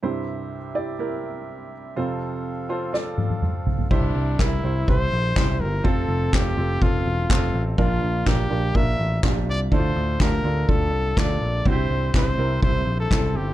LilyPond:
<<
  \new Staff \with { instrumentName = "Trumpet" } { \time 4/4 \key c \mixolydian \tempo 4 = 124 r1 | r1 | d'4 e'4 c''4. bes'8 | a'4 g'4 f'4 f'8. r16 |
f'4 g'4 e''4 r8 d''8 | c''4 bes'4 a'4 d''4 | c''4 c''4 c''8. a'8. g'8 | }
  \new Staff \with { instrumentName = "Accordion" } { \time 4/4 \key c \mixolydian << { <c g' e''>1 | <f a' f''>1 | r1 | r1 |
r1 | r1 | r1 | } \\ { c'1~ | c'1 | r1 | r1 |
r1 | r1 | r1 | } >> }
  \new Staff \with { instrumentName = "Grand piano" } { \time 4/4 \key c \mixolydian <e' g' c''>4 r8 <e' g' d''>8 <e' g' bes'>4. r8 | <f' a' c''>4 r8 <f' a' c''>8 <f' a' d''>4. r8 | <e' g' c''>8. r16 <e' g' bes'>8 <e' g' c''>8 <e' g' c''>8. r16 <e' g' c''>8. r16 | <c' f' a'>8. r16 <c' f' a'>8 <c' f' a'>8 <c' f' a'>8. r16 <c' f' a'>8. r16 |
<d' f' bes'>8. r16 <d' f' bes'>8 <d' f' bes'>8 <d' f' bes'>8. r16 <d' f' g'>8. r16 | <d' e' f' a'>8. r16 <d' f' g'>8 <d' f' a'>8 <d' f' a'>8. r16 <d' f' a'>8. r16 | <c' e' fis' g'>8. r16 <c' e' g'>8 <c' e' bes'>8 <c' e' g'>8. r16 <c' e' a'>8. r16 | }
  \new Staff \with { instrumentName = "Grand piano" } { \clef bass \time 4/4 \key c \mixolydian <c, g,>1 | <f, c>1 | g,4. r2 r8 | c4. r2 r8 |
<bes, f>4. r2 r8 | a,4. r2 r8 | g,4. r2 r8 | }
  \new Staff \with { instrumentName = "Picked electric bass" } { \clef bass \time 4/4 \key c \mixolydian r1 | r1 | c,8 c,8 c,8 c,8 c,8 bes,,8 c,8 g,,8 | f,,8 f,,8 f,,8 f,,8 f,,8 e,,8 f,,8 a,,8 |
bes,,8 bes,,8 bes,,8 bes,,8 bes,,8 a,,8 bes,,8 c,8 | d,8 d,8 d,8 d,8 d,8 c,8 d,8 bes,,8 | c,8 c,8 c,8 c,8 c,8 bes,,8 c,8 g,,8 | }
  \new DrumStaff \with { instrumentName = "Drums" } \drummode { \time 4/4 r4 r4 r4 r4 | r4 r4 sn8 tommh16 tommh16 toml8 tomfh16 tomfh16 | <cymc bd>4 <hc bd sn>4 bd4 <hc bd sn>4 | bd4 <hc bd sn>4 bd4 <hc bd sn>4 |
bd4 <hc bd sn>4 bd4 <hc bd sn>4 | bd4 <hc bd sn>4 bd4 <hc bd sn>4 | bd4 <hc bd sn>4 bd4 <hc bd sn>4 | }
>>